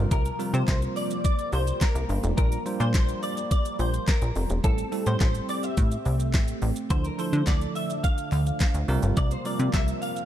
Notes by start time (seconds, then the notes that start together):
Already playing: C3 F3 G3 A#3 C4 F4 A#4
0.11 C2 A#4, kick, closed hi-hat, shaker
0.25 closed hi-hat, shaker
0.39 G3 C4 F4 A#4, open hi-hat, shaker
0.54 C3 C5, closed hi-hat, shaker
0.68 C2, kick, snare, clap, closed hi-hat, shaker
0.82 closed hi-hat, shaker
0.96 D5, open hi-hat, shaker
1.11 closed hi-hat, shaker
1.24 D5, kick, closed hi-hat, shaker
1.39 closed hi-hat, shaker
1.52 C2 C5, open hi-hat, shaker
1.67 closed hi-hat, shaker
1.81 A#4, kick, snare, clap, closed hi-hat, shaker
1.95 C2, closed hi-hat, shaker
2.09 G1, open hi-hat, shaker
2.23 F1, closed hi-hat, shaker
2.37 A#1 G3 D4 F4 A#4, kick, closed hi-hat, shaker
2.52 closed hi-hat, shaker
2.66 G3 D4 F4 C5, open hi-hat, shaker
2.80 A#2 C5, closed hi-hat, shaker
2.94 A#1, kick, snare, clap, closed hi-hat, shaker
3.08 closed hi-hat, shaker
3.23 D5, open hi-hat, shaker
3.37 closed hi-hat, shaker
3.51 D5, kick, closed hi-hat, shaker
3.65 closed hi-hat, shaker
3.79 A#1 C5, open hi-hat, shaker
3.94 closed hi-hat, shaker
4.07 A#4, kick, snare, clap, closed hi-hat, shaker
4.22 A#1, closed hi-hat, shaker
4.35 F1, open hi-hat, shaker
4.50 E1, closed hi-hat, shaker
4.64 A1 G3 A3 C4 E4 G4 A4, kick, closed hi-hat, shaker
4.78 closed hi-hat, shaker
4.92 G3 C4 E4 A4, open hi-hat, shaker
5.06 A2 C5, closed hi-hat, shaker
5.20 A1, kick, snare, clap, closed hi-hat, shaker
5.35 closed hi-hat, shaker
5.49 D5, open hi-hat, shaker
5.63 E5, closed hi-hat, shaker
5.77 A2, kick, closed hi-hat, shaker
5.91 closed hi-hat, shaker
6.05 C2, open hi-hat, shaker
6.20 closed hi-hat, shaker
6.33 A1, kick, snare, clap, closed hi-hat, shaker
6.48 closed hi-hat, shaker
6.62 A1, open hi-hat, shaker
6.76 closed hi-hat, shaker
6.90 D2 D3 F3 D4 E4 A4 C5, kick, closed hi-hat, shaker
7.04 A#4, closed hi-hat, shaker
7.18 F3 D4 E4 A4 C5, open hi-hat, shaker
7.33 D3, closed hi-hat, shaker
7.47 D2 D5, kick, snare, clap, closed hi-hat, shaker
7.61 closed hi-hat, shaker
7.75 E5, open hi-hat, shaker
7.90 closed hi-hat, shaker
8.03 F5, kick, closed hi-hat, shaker
8.18 closed hi-hat, shaker
8.32 D2, clap, open hi-hat, shaker
8.46 closed hi-hat, shaker
8.60 kick, snare, clap, closed hi-hat, shaker
8.74 D2, closed hi-hat, shaker
8.88 C2 C3 G3 A#3 C4 F4 A#4, open hi-hat, shaker
9.03 G1, closed hi-hat, shaker
9.17 C2 D5, kick, closed hi-hat, shaker
9.31 C5, closed hi-hat, shaker
9.45 G3 C4 F4 A#4 D5, open hi-hat, shaker
9.59 C3, closed hi-hat, shaker
9.73 C2 E5, kick, snare, clap, closed hi-hat, shaker
9.88 closed hi-hat, shaker
10.02 F5, open hi-hat, shaker
10.16 closed hi-hat, shaker